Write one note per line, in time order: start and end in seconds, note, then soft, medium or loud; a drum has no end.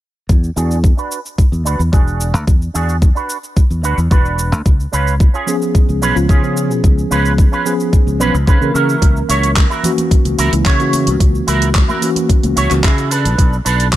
0.29 0.49 E2 medium
0.29 kick loud
0.29 cabasa soft
0.44 cabasa soft
0.56 0.91 E2 medium
0.56 0.77 D4 loud
0.56 0.77 F#4 medium
0.56 0.78 G#4 loud
0.56 cabasa medium
0.71 cabasa soft
0.84 kick loud
0.84 cabasa soft
0.97 1.18 D4 medium
0.97 1.18 F#4 medium
0.97 1.19 B4 medium
0.97 cabasa soft
1.12 cabasa medium
1.26 cabasa soft
1.38 muted clean electric guitar stroke soft
1.38 muted fingered electric bass stroke soft
1.38 kick loud
1.38 cabasa soft
1.52 1.65 E2 medium
1.52 cabasa soft
1.65 1.75 D2 medium
1.65 1.79 D4 loud
1.65 1.80 F#4 medium
1.65 1.80 B4 loud
1.65 cabasa medium
1.79 1.89 E2 medium
1.79 cabasa soft
1.92 2.34 E1 medium
1.92 2.34 D4 medium
1.92 2.34 F#4 medium
1.92 2.35 G#4 medium
1.92 kick loud
1.92 cabasa soft
2.07 cabasa soft
2.21 cabasa medium
2.34 2.44 D2 medium
2.34 cabasa soft
2.47 2.67 E2 medium
2.47 kick loud
2.47 cabasa soft
2.62 cabasa soft
2.74 3.10 E2 medium
2.74 2.95 D4 loud
2.74 2.95 F#4 loud
2.74 2.96 G#4 loud
2.74 cabasa medium
2.89 cabasa soft
3.02 kick loud
3.02 cabasa soft
3.15 3.36 D4 medium
3.15 3.36 F#4 medium
3.15 3.37 B4 medium
3.15 cabasa soft
3.30 cabasa medium
3.44 cabasa soft
3.56 muted clean electric guitar stroke soft
3.56 kick loud
3.56 cabasa soft
3.70 3.84 E2 medium
3.70 cabasa soft
3.83 3.94 D2 medium
3.83 3.98 D4 loud
3.83 3.98 F#4 loud
3.83 3.98 B4 loud
3.83 cabasa medium
3.98 4.07 E2 medium
3.98 cabasa soft
4.11 4.52 E1 medium
4.11 4.52 D4 medium
4.11 4.53 F#4 medium
4.11 4.53 B4 medium
4.11 kick loud
4.11 cabasa soft
4.25 cabasa soft
4.39 cabasa medium
4.52 4.62 D2 medium
4.52 cabasa soft
4.66 4.85 C#2 medium
4.66 kick loud
4.66 cabasa soft
4.80 cabasa soft
4.92 5.28 C#2 medium
4.92 5.13 C#4 loud
4.92 5.14 F4 medium
4.92 5.14 B4 loud
4.92 cabasa medium
5.07 cabasa soft
5.20 kick loud
5.20 cabasa soft
5.34 5.54 C#4 medium
5.34 5.55 F4 medium
5.34 5.55 G#4 medium
5.34 cabasa soft
5.46 6.12 F3 medium
5.46 6.13 B3 medium
5.46 6.13 C#4 medium
5.46 6.13 G#4 loud
5.46 cabasa medium
5.62 cabasa soft
5.74 muted clean electric guitar stroke soft
5.74 muted fingered electric bass stroke soft
5.74 kick loud
5.74 cabasa soft
5.89 6.02 C#2 medium
5.89 cabasa soft
6.01 6.12 B1 medium
6.01 6.16 C#4 loud
6.01 6.16 F4 loud
6.01 6.17 B4 loud
6.01 cabasa medium
6.15 6.25 C#2 medium
6.15 6.40 F3 medium
6.15 6.40 B3 medium
6.15 6.40 C#4 medium
6.15 6.40 F4 medium
6.15 cabasa soft
6.29 6.71 C#3 medium
6.29 6.70 C#4 medium
6.29 6.71 F4 medium
6.29 6.71 G#4 medium
6.29 kick loud
6.29 cabasa soft
6.42 7.62 F3 medium
6.42 7.62 B3 medium
6.42 7.63 C#4 medium
6.42 7.63 G#4 medium
6.42 cabasa soft
6.57 cabasa medium
6.71 6.80 B2 medium
6.71 cabasa soft
6.84 7.03 C#2 medium
6.84 kick loud
6.84 cabasa soft
6.98 cabasa soft
7.10 7.46 C#2 medium
7.10 7.32 C#4 loud
7.10 7.32 F4 medium
7.10 7.32 B4 loud
7.10 cabasa medium
7.26 cabasa soft
7.38 kick loud
7.38 cabasa soft
7.52 7.72 C#4 medium
7.52 7.73 F4 medium
7.52 7.73 B4 medium
7.52 cabasa soft
7.65 8.17 F3 medium
7.65 8.17 B3 medium
7.65 8.18 C#4 medium
7.65 8.18 G#4 medium
7.65 cabasa medium
7.80 cabasa soft
7.92 muted clean electric guitar stroke soft
7.92 kick loud
7.92 cabasa soft
8.07 8.20 C#2 medium
8.07 cabasa soft
8.20 8.30 B1 medium
8.20 8.34 F3 medium
8.20 8.34 B3 medium
8.20 8.34 C#4 loud
8.20 8.34 C#4 medium
8.20 8.34 F4 loud
8.20 8.35 B4 medium
8.20 8.35 B4 loud
8.20 cabasa medium
8.34 8.44 C#2 medium
8.34 cabasa soft
8.47 8.57 C#3 medium
8.47 8.74 C#4 medium
8.47 8.75 F4 medium
8.47 8.75 B4 medium
8.47 kick loud
8.47 cabasa soft
8.60 8.71 C#3 medium
8.60 9.80 E3 medium
8.60 9.81 A#3 medium
8.60 9.81 C#4 medium
8.60 9.81 A#4 medium
8.60 cabasa soft
8.74 8.94 C#3 medium
8.74 9.19 E4 medium
8.74 9.19 F#4 medium
8.74 9.19 A#4 medium
8.74 cabasa medium
8.89 cabasa soft
9.02 9.21 C#2 medium
9.02 kick loud
9.02 closed hi-hat medium
9.02 cabasa soft
9.17 cabasa soft
9.29 9.64 C#2 medium
9.29 9.50 E4 loud
9.29 9.50 F#4 medium
9.29 9.51 C#5 loud
9.29 open hi-hat loud
9.29 cabasa medium
9.43 closed hi-hat soft
9.43 cabasa soft
9.56 kick loud
9.56 clap loud
9.56 closed hi-hat medium
9.56 cabasa soft
9.70 9.91 E4 medium
9.70 9.91 F#4 medium
9.70 9.91 A#4 medium
9.70 cabasa soft
9.83 10.49 E3 medium
9.83 10.49 A#3 medium
9.83 10.49 C#4 medium
9.83 10.50 F#4 loud
9.83 open hi-hat medium
9.83 low conga medium
9.83 cabasa medium
9.98 closed hi-hat soft
9.98 high conga medium
9.98 cabasa soft
10.11 muted clean electric guitar stroke soft
10.11 muted fingered electric bass stroke soft
10.11 kick loud
10.11 closed hi-hat medium
10.11 cabasa soft
10.25 10.34 C#2 medium
10.25 closed hi-hat soft
10.25 cabasa soft
10.38 10.48 C#2 medium
10.38 10.52 E4 loud
10.38 10.53 F#4 medium
10.38 10.53 A#4 loud
10.38 open hi-hat loud
10.38 cabasa medium
10.52 10.62 C#2 medium
10.52 10.76 E3 medium
10.52 10.77 A#3 medium
10.52 10.77 C#4 medium
10.52 10.77 E4 medium
10.52 closed hi-hat soft
10.52 cabasa soft
10.65 11.09 C#3 medium
10.65 11.07 E4 medium
10.65 11.07 F#4 medium
10.65 11.08 C#5 medium
10.65 kick loud
10.65 clap loud
10.65 closed hi-hat medium
10.65 cabasa soft
10.79 11.99 E3 medium
10.79 11.99 A#3 medium
10.79 11.99 C#4 medium
10.79 12.00 F#4 medium
10.79 closed hi-hat soft
10.79 cabasa soft
10.93 open hi-hat medium
10.93 high conga medium
10.93 cabasa medium
11.07 11.17 C#2 medium
11.07 closed hi-hat soft
11.07 cabasa soft
11.20 kick loud
11.20 closed hi-hat medium
11.20 cabasa soft
11.35 cabasa soft
11.47 11.82 C#2 medium
11.47 11.68 E4 loud
11.47 11.68 F#4 loud
11.47 11.69 A#4 loud
11.47 open hi-hat loud
11.47 cabasa medium
11.62 closed hi-hat soft
11.62 cabasa soft
11.75 kick loud
11.75 clap loud
11.75 closed hi-hat medium
11.75 cabasa soft
11.88 12.09 E4 medium
11.88 12.09 F#4 medium
11.88 12.10 A#4 medium
11.88 high conga medium
11.88 cabasa soft
12.01 12.67 E3 medium
12.01 12.67 A#3 medium
12.01 12.68 C#4 medium
12.01 12.68 F#4 loud
12.01 open hi-hat medium
12.01 cabasa medium
12.16 closed hi-hat soft
12.16 high conga medium
12.16 cabasa soft
12.29 muted clean electric guitar stroke soft
12.29 kick loud
12.29 closed hi-hat medium
12.29 cabasa soft
12.43 12.53 C#2 medium
12.43 closed hi-hat soft
12.43 high conga medium
12.43 cabasa soft
12.56 12.67 C#2 medium
12.56 12.70 E4 loud
12.56 12.71 F#4 loud
12.56 12.71 C#5 loud
12.56 open hi-hat loud
12.56 cabasa medium
12.70 12.80 C#2 medium
12.70 12.84 E3 medium
12.70 12.84 A#3 medium
12.70 12.84 C#4 medium
12.70 12.84 F#4 medium
12.70 clap soft
12.70 closed hi-hat soft
12.70 cabasa soft
12.83 13.27 C#3 medium
12.83 13.11 E4 medium
12.83 13.10 F#4 medium
12.83 13.11 G#4 medium
12.83 kick loud
12.83 clap loud
12.83 closed hi-hat medium
12.83 cabasa soft
12.98 closed hi-hat soft
12.98 cabasa soft
13.11 13.55 D4 medium
13.11 13.55 A4 medium
13.11 13.56 B4 medium
13.11 open hi-hat medium
13.11 cabasa medium
13.25 13.35 B1 medium
13.25 closed hi-hat soft
13.25 cabasa soft
13.38 kick loud
13.38 closed hi-hat medium
13.38 cabasa soft
13.53 cabasa soft
13.65 13.96 B1 medium
13.65 13.86 D4 loud
13.65 13.86 A4 loud
13.65 13.87 B4 loud
13.65 open hi-hat loud
13.65 cabasa medium
13.80 closed hi-hat soft
13.80 cabasa soft
13.93 kick loud
13.93 clap loud
13.93 closed hi-hat medium